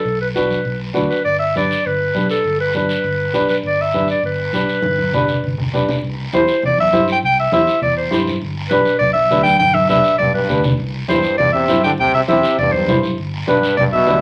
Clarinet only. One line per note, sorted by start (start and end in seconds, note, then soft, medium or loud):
0.00 0.20 A4 medium
0.21 0.28 B4 medium
0.35 0.80 B4 medium
1.09 1.24 B4 medium
1.24 1.38 D5 loud
1.39 1.54 E5 medium
1.57 1.88 D5 medium
1.86 2.30 B4 medium
2.30 2.58 A4 medium
2.60 2.74 B4 medium
2.76 3.46 B4 medium
3.50 3.56 B4 medium
3.67 3.83 D5 medium
3.81 4.10 E5 medium
4.10 4.24 D5 medium
4.25 5.70 B4 medium
6.34 6.61 C5 medium
6.66 6.78 D5 loud
6.80 7.07 E5 loud
7.12 7.18 G5 loud
7.25 7.38 G5 loud
7.39 7.52 E5 medium
7.53 7.81 E5 loud
7.82 7.96 D5 loud
7.97 8.25 C5 medium
8.70 8.98 B4 medium
8.99 9.13 D5 loud
9.13 9.42 E5 loud
9.43 9.58 G5 loud
9.59 9.76 G5 loud
9.74 9.89 E5 loud
9.90 10.18 E5 loud
10.18 10.33 D5 loud
10.34 10.62 B4 medium
11.09 11.37 C5 medium
11.38 11.52 D5 loud
11.53 11.81 E5 medium
11.84 11.91 G5 loud
12.00 12.13 G5 loud
12.14 12.21 E5 medium
12.28 12.56 E5 loud
12.58 12.74 D5 loud
12.72 13.02 C5 medium
13.48 13.76 B4 medium
13.77 13.84 D5 loud
13.93 14.20 E5 loud